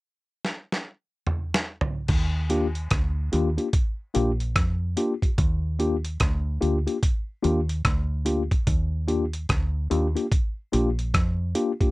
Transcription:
0.45 snare medium
0.72 snare medium
1.27 mid tom medium
1.54 snare medium
1.81 floor tom medium
2.08 2.87 D#2 loud
2.08 kick loud
2.08 crash medium
2.50 2.66 A#3 medium
2.50 2.66 D4 medium
2.50 2.66 F4 medium
2.50 2.66 G4 loud
2.50 closed hi-hat medium
2.75 closed hi-hat medium
2.91 3.30 D2 medium
2.91 kick loud
2.91 cross-stick loud
2.91 closed hi-hat medium
3.32 3.57 D#2 medium
3.32 3.48 A#3 medium
3.32 3.48 D4 medium
3.32 3.49 F4 medium
3.32 3.49 G4 medium
3.32 closed hi-hat medium
3.57 3.67 A#3 medium
3.57 3.67 D4 medium
3.57 3.68 F4 medium
3.57 3.68 G4 medium
3.57 closed hi-hat soft
3.73 kick loud
3.73 closed hi-hat medium
4.14 4.54 A#1 medium
4.14 4.30 A#3 medium
4.14 4.30 D4 medium
4.14 4.31 F4 medium
4.14 4.31 G4 loud
4.14 closed hi-hat medium
4.40 closed hi-hat soft
4.56 4.94 F2 medium
4.56 kick loud
4.56 cross-stick loud
4.56 closed hi-hat medium
4.97 5.13 A#3 medium
4.97 5.13 D4 medium
4.97 5.13 F4 medium
4.97 5.13 G4 medium
4.97 closed hi-hat medium
5.22 5.29 F4 soft
5.22 5.29 G4 soft
5.22 kick medium
5.22 closed hi-hat soft
5.38 6.16 D#2 loud
5.38 kick loud
5.38 closed hi-hat medium
5.79 5.95 A#3 medium
5.79 5.95 D4 medium
5.79 5.95 F4 medium
5.79 5.96 G4 loud
5.79 closed hi-hat medium
6.05 closed hi-hat medium
6.20 6.59 D2 medium
6.20 kick loud
6.20 cross-stick loud
6.20 closed hi-hat medium
6.61 6.86 D2 medium
6.61 6.77 A#3 medium
6.61 6.77 D4 medium
6.61 6.77 F4 medium
6.61 6.77 G4 medium
6.61 closed hi-hat medium
6.86 6.96 A#3 medium
6.86 6.97 D4 medium
6.86 6.97 F4 medium
6.86 6.97 G4 medium
6.86 closed hi-hat medium
7.03 kick loud
7.03 closed hi-hat medium
7.43 7.82 D#2 medium
7.43 7.59 A#3 medium
7.43 7.59 D4 medium
7.43 7.59 F4 medium
7.43 7.59 G4 loud
7.43 closed hi-hat medium
7.69 closed hi-hat soft
7.85 8.48 D2 medium
7.85 kick loud
7.85 cross-stick loud
7.85 closed hi-hat medium
8.25 8.42 A#3 medium
8.25 8.42 D4 medium
8.25 8.42 F4 medium
8.25 8.42 G4 medium
8.25 closed hi-hat medium
8.51 kick medium
8.51 closed hi-hat soft
8.67 9.46 D#2 medium
8.67 kick loud
8.67 closed hi-hat medium
9.08 9.24 A#3 medium
9.08 9.24 D4 medium
9.08 9.24 F4 medium
9.08 9.24 G4 medium
9.08 closed hi-hat medium
9.33 closed hi-hat medium
9.49 9.88 D2 medium
9.49 kick loud
9.49 cross-stick loud
9.49 closed hi-hat medium
9.90 10.15 D#2 medium
9.90 10.06 A#3 medium
9.90 10.07 D4 medium
9.90 10.07 F4 medium
9.90 10.07 G4 medium
9.90 closed hi-hat medium
10.15 10.26 A#3 medium
10.15 10.26 D4 medium
10.15 10.26 F4 medium
10.15 10.26 G4 medium
10.15 closed hi-hat soft
10.32 kick loud
10.32 closed hi-hat medium
10.72 11.12 A#1 medium
10.72 10.89 A#3 medium
10.72 10.89 D4 medium
10.72 10.89 F4 medium
10.72 10.89 G4 medium
10.72 closed hi-hat medium
10.99 closed hi-hat soft
11.14 11.53 F2 medium
11.14 kick loud
11.14 cross-stick medium
11.14 closed hi-hat medium
11.55 11.71 A#3 medium
11.55 11.71 D4 medium
11.55 11.71 F4 medium
11.55 11.71 G4 medium
11.55 closed hi-hat medium
11.80 11.90 A#3 medium
11.80 11.91 D4 medium
11.80 11.91 F4 medium
11.80 11.91 G4 medium
11.80 kick medium
11.80 closed hi-hat soft

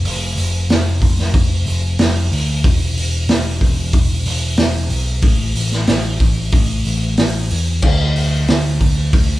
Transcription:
0.04 0.35 F1 loud
0.04 open hi-hat medium
0.36 0.68 F1 loud
0.36 open hi-hat medium
0.69 1.00 F1 medium
0.69 snare loud
0.69 open hi-hat medium
1.01 1.33 F1 medium
1.01 kick medium
1.01 open hi-hat medium
1.19 snare soft
1.34 1.65 F1 loud
1.34 kick loud
1.34 open hi-hat medium
1.66 1.97 F1 medium
1.66 open hi-hat medium
1.99 2.30 F1 medium
1.99 snare loud
1.99 open hi-hat loud
2.30 2.62 D2 medium
2.30 open hi-hat medium
2.64 3.26 E1 loud
2.64 kick loud
2.64 open hi-hat medium
2.97 open hi-hat medium
3.29 3.60 E1 medium
3.29 snare loud
3.29 open hi-hat medium
3.61 3.92 E1 loud
3.61 kick medium
3.61 open hi-hat medium
3.93 4.24 E1 loud
3.93 kick loud
3.93 open hi-hat medium
4.26 4.57 E1 medium
4.26 open hi-hat medium
4.57 4.89 E1 loud
4.57 snare loud
4.57 open hi-hat medium
4.90 5.21 B1 medium
4.90 open hi-hat medium
5.22 5.54 A1 loud
5.22 kick loud
5.22 open hi-hat medium
5.55 5.87 A1 medium
5.55 open hi-hat medium
5.72 snare soft
5.87 6.19 A1 medium
5.87 snare loud
5.87 open hi-hat medium
6.20 6.51 A1 medium
6.20 kick medium
6.20 open hi-hat medium
6.52 6.84 A1 medium
6.52 kick loud
6.52 open hi-hat medium
6.85 7.17 A1 loud
6.85 open hi-hat medium
7.17 7.49 A1 medium
7.17 snare loud
7.17 open hi-hat loud
7.50 7.82 E2 medium
7.50 open hi-hat medium
7.82 8.45 D2 loud
7.82 kick loud
7.82 crash loud
8.16 open hi-hat medium
8.48 8.79 D2 medium
8.48 snare loud
8.48 open hi-hat medium
8.81 9.12 D2 medium
8.81 kick medium
8.81 open hi-hat medium
9.13 9.40 D2 loud
9.13 kick loud
9.13 open hi-hat medium

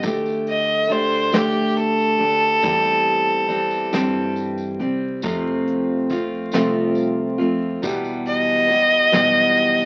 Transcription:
0.02 1.30 D2 medium
0.02 0.87 D3 medium
0.02 0.88 A3 medium
0.02 0.91 G4 medium
0.02 kick medium
0.02 closed hi-hat medium
0.02 tambourine medium
0.26 tambourine soft
0.47 0.93 D#5 medium
0.47 closed hi-hat soft
0.88 1.32 D3 medium
0.88 1.32 A3 medium
0.88 1.33 D4 medium
0.88 1.32 G4 medium
0.88 1.37 C5 medium
0.88 closed hi-hat soft
0.88 tambourine soft
1.12 tambourine soft
1.32 2.16 D2 medium
1.32 2.21 D3 medium
1.32 2.20 A3 medium
1.32 2.18 D4 medium
1.32 2.17 G4 medium
1.32 1.78 G4 medium
1.32 snare medium
1.32 closed hi-hat medium
1.32 tambourine medium
1.76 4.32 A4 medium
1.76 closed hi-hat soft
1.76 tambourine soft
1.97 tambourine soft
2.18 2.61 D2 medium
2.18 2.62 A3 soft
2.18 2.63 D4 soft
2.18 2.62 G4 soft
2.18 closed hi-hat soft
2.62 3.89 E2 medium
2.62 3.46 E3 medium
2.62 3.47 G3 medium
2.62 3.49 C4 medium
2.62 3.49 G4 medium
2.62 kick medium
2.62 closed hi-hat medium
2.62 tambourine medium
2.84 tambourine soft
3.07 closed hi-hat soft
3.48 3.92 E3 medium
3.48 3.92 G3 medium
3.48 3.92 C4 medium
3.48 3.91 G4 medium
3.48 closed hi-hat soft
3.48 tambourine soft
3.71 tambourine soft
3.93 4.76 G2 medium
3.93 4.80 E3 medium
3.93 4.80 G3 medium
3.93 4.79 C4 medium
3.93 4.78 G4 medium
3.93 snare medium
3.93 closed hi-hat medium
3.93 tambourine medium
4.36 closed hi-hat soft
4.36 tambourine soft
4.58 tambourine soft
4.79 5.21 C2 medium
4.79 5.24 G3 soft
4.79 5.22 C4 soft
4.79 5.23 G4 medium
4.79 closed hi-hat soft
5.22 6.09 F2 medium
5.22 6.49 F2 medium
5.22 6.10 C3 medium
5.22 6.08 F3 medium
5.22 6.09 A3 medium
5.22 6.10 C4 medium
5.22 6.10 F4 medium
5.22 kick medium
5.22 closed hi-hat medium
5.22 tambourine medium
5.68 closed hi-hat soft
6.10 6.53 F3 medium
6.10 6.52 A3 medium
6.10 6.52 C4 medium
6.10 6.52 F4 medium
6.10 kick medium
6.10 closed hi-hat medium
6.10 tambourine soft
6.52 7.36 C2 medium
6.52 7.40 F2 medium
6.52 7.40 C3 medium
6.52 7.40 F3 medium
6.52 7.39 A3 medium
6.52 7.38 C4 medium
6.52 7.37 F4 medium
6.52 snare medium
6.52 closed hi-hat medium
6.52 tambourine medium
6.95 closed hi-hat soft
6.95 tambourine soft
7.38 7.80 F2 medium
7.38 7.83 F3 soft
7.38 7.83 A3 soft
7.38 7.83 C4 medium
7.38 7.82 F4 medium
7.38 closed hi-hat soft
7.82 8.69 E2 medium
7.82 9.09 E2 medium
7.82 8.69 B2 medium
7.82 8.67 E3 medium
7.82 8.69 G3 medium
7.82 8.68 B3 medium
7.82 8.70 G4 medium
7.82 kick medium
7.82 closed hi-hat medium
7.82 tambourine loud
8.04 tambourine soft
8.27 9.85 D#5 loud
8.27 closed hi-hat soft
8.68 9.11 E3 medium
8.68 9.11 G3 medium
8.68 9.11 B3 medium
8.68 9.11 G4 medium
8.68 closed hi-hat medium
8.68 tambourine soft
8.91 tambourine soft
9.12 9.85 B1 medium
9.12 9.85 E2 medium
9.12 9.85 B2 medium
9.12 9.85 E3 medium
9.12 9.85 G3 medium
9.12 9.85 B3 medium
9.12 9.85 G4 medium
9.12 snare medium
9.12 closed hi-hat medium
9.12 tambourine medium
9.55 closed hi-hat soft
9.55 tambourine soft
9.77 tambourine soft

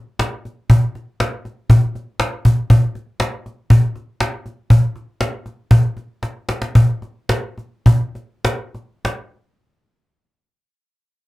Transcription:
0.19 cajon slap loud
0.45 cajon slap soft
0.70 cajon bass loud
0.95 cajon slap soft
1.20 cajon slap loud
1.45 cajon slap soft
1.70 cajon bass loud
1.95 cajon slap soft
2.20 cajon slap loud
2.45 cajon bass medium
2.70 cajon bass loud
2.95 cajon slap soft
3.20 cajon slap loud
3.46 cajon slap soft
3.70 cajon bass loud
3.96 cajon slap soft
4.20 cajon slap loud
4.46 cajon slap soft
4.70 cajon bass loud
4.96 cajon slap soft
5.21 cajon slap loud
5.46 cajon slap soft
5.71 cajon bass loud
5.97 cajon slap soft
6.23 cajon slap medium
6.49 cajon slap medium
6.62 cajon slap medium
6.75 cajon bass loud
7.02 cajon slap soft
7.29 cajon slap loud
7.58 cajon slap soft
7.86 cajon bass loud
8.15 cajon slap soft
8.45 cajon slap loud
8.75 cajon slap soft
9.05 cajon slap medium

